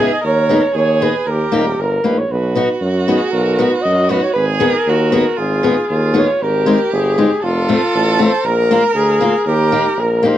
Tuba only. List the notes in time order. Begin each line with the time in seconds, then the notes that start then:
0.24 D#2
0.75 D#2
1.26 D#2
1.52 D#1
1.78 G1
2.04 A#1
2.29 B1
2.81 F#2
3.33 B1
3.85 F#2
4.35 G#1
4.87 D#2
5.39 G#1
5.90 D#2
6.42 G#1
6.92 G1
7.42 F1
7.94 A1
8.44 A#1
8.94 D2
9.46 D#2
9.97 A#1